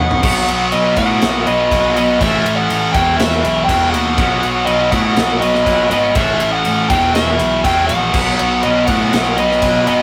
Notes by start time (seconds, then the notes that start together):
Already playing: F#5
0.00 B2 F#3 B3 D#5
0.11 floor tom
0.23 B1 B2 F#3 B3, kick, crash
0.48 B1, ride
0.72 B1 B4 D#5, ride
0.97 A2 B2 F#3 B3 D#5 F#5, kick, ride
1.22 B1, snare, ride
1.46 B1 B4 D#5, ride
1.71 B1 B2 F#3 B3, kick, ride
1.95 B1 F#3 B3 B4 D#5, ride
2.00 B2
2.21 A1 A2 E3 A3 C#5 E5, kick, ride
2.45 A1, ride
2.57 D#5 F#5
2.70 A1, ride
2.93 E1 E2 B2 E5 G5, kick, ride
2.97 E3
3.17 E1 B4 E5, snare, ride
3.45 B1, ride
3.65 E1 E5 G5
3.69 E2 B2 E3, kick, ride
3.90 D#5 F#5, ride
3.94 D#2
4.18 B1 B2 F#3 B3, kick, ride
4.43 B1, ride
4.65 B1 B4 D#5, ride
4.91 A2 B2 F#3 B3 D#5 F#5, kick, ride
5.16 B1, snare, ride
5.39 B1 B4 D#5, ride
5.55 snare
5.66 B1 B2 F#3 B3, kick, ride
5.90 G#1 F#3 B3 B4 D#5, ride
5.95 B2
6.14 A1 A2 E3 A3 C#5 E5, kick, ride
6.40 A1, ride
6.50 D#5 F#5
6.65 A1, ride
6.89 E1 E2 B2 E3 E5 G5, kick, ride
7.15 E1 B4 E5, snare, ride
7.39 B1, ride
7.64 E1 E2 B2 E3 E5 G5, kick, ride
7.87 A#1 D#5 F#5, ride
8.14 B1 B2 F#3 B3, kick, crash
8.39 B1, ride
8.61 B1 B4 D#5, ride
8.86 A2 F#3 B3 D#5 F#5, kick, ride
8.90 B2
9.13 B1, snare, ride
9.37 B1 B4 D#5, ride
9.51 snare
9.62 B1 B2 F#3 B3, kick, ride
9.87 G1 F#3 B3 B4 D#5, ride
9.91 B2